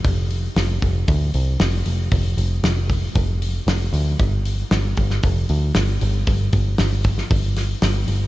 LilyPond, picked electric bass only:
\new Staff \with { instrumentName = "Picked electric bass" } { \clef bass \time 4/4 \key g \dorian \tempo 4 = 116 f,,4 f,,8 f,,8 d,8 c,8 f,,8 f,,8 | f,,8 f,,8 f,,4 f,,4 f,,8 d,8 | g,,4 g,,8 g,,8 f,,8 d,8 g,,8 g,,8 | g,,8 g,,8 g,,4 g,,4 g,,8 g,,8 | }